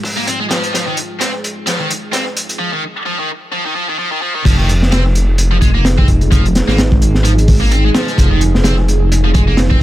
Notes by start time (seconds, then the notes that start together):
Already playing: G#3 F4 G4 D#5
0.03 kick, open hi-hat
0.17 A#3
0.26 C4, closed hi-hat
0.40 G#3
0.50 F3, snare, closed hi-hat
0.63 closed hi-hat
0.73 F3 G#4, snare, closed hi-hat
0.87 D#3
0.97 closed hi-hat
1.19 C4, snare, closed hi-hat
1.44 closed hi-hat
1.66 F3, snare, closed hi-hat
1.80 D#3
1.91 closed hi-hat
2.13 C4, snare, closed hi-hat
2.37 closed hi-hat
2.49 closed hi-hat
2.59 F3
2.73 D#3
3.06 F3
3.19 D#3
3.52 F3
3.66 D#3
3.75 F3
3.89 D#3
3.99 F3
4.12 D#3
4.22 F3
4.35 D#3
4.45 F1 F3 D#4 G#4, kick, closed hi-hat, crash
4.58 D#3
4.69 closed hi-hat
4.83 snare
4.92 C4, snare, closed hi-hat
5.15 closed hi-hat
5.38 closed hi-hat
5.51 F3
5.61 G#3, kick, closed hi-hat
5.75 A#3
5.85 snare, closed hi-hat
5.98 C4, kick
6.08 F1, kick, closed hi-hat
6.21 closed hi-hat
6.31 F3, kick, closed hi-hat
6.46 closed hi-hat
6.55 snare, closed hi-hat
6.68 G#1 A#3, snare
6.78 snare, closed hi-hat
6.92 kick
7.02 closed hi-hat
7.15 snare
7.24 F3, closed hi-hat
7.38 closed hi-hat
7.48 kick, open hi-hat
7.61 A#3
7.71 C4, closed hi-hat
7.85 G#3
7.95 F3, snare, closed hi-hat
8.08 closed hi-hat
8.18 F1 F3, kick, closed hi-hat
8.31 D#3
8.41 closed hi-hat
8.55 snare
8.64 C4, snare, closed hi-hat
8.88 closed hi-hat
9.12 closed hi-hat
9.24 F3
9.34 G#3, kick, closed hi-hat
9.47 A#3
9.57 snare, closed hi-hat
9.70 C4, kick